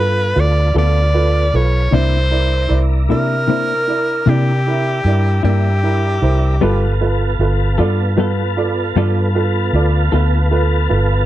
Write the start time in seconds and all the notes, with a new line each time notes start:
Already playing: G2 B3 F4 A4 B4
0.36 D2 F4 A4 B4
0.40 D5
0.74 D2 B3 F4 A4 B4 D5
1.14 F4 A4 B4
1.54 B1 F4 A4 B4 C#5
1.91 C2 C3 A#3 D4 E4 A#4 C5 D5
2.31 E4 A#4 D5
2.69 C2 E4 A#4 D5
3.09 C3 A#3 D4 E4 A#4 E5
3.47 C3 A#3 D4 E4 A#4 C5
3.88 E4 A#4 D5
4.26 C3 A#3 D4 E4 G4 A#4 D5
4.67 E4 A#4 E5
5.05 G2 E4 A#4 D5
5.43 G2 A#3 D4 E4 G4 A#4 E5
5.83 E4 A#4 E5
6.22 C2 E4 A#4 C5
6.61 G1 G3 B3 F4 A4 B4
7.01 F4 A4 B4
7.39 G1 F4 A4 B4
7.78 G2 B3 F4 A4 D5
8.16 G3 B3 F4 A4 B4
8.57 F4 A4 D5
8.96 G2 G3 B3 F4 A4 D5
9.35 F4 A4 B4
9.73 D2 F4 A4 D5
10.12 D2 B3 F4 A4 B4
10.51 F4 A4 B4
10.89 G1 F4 A4 B4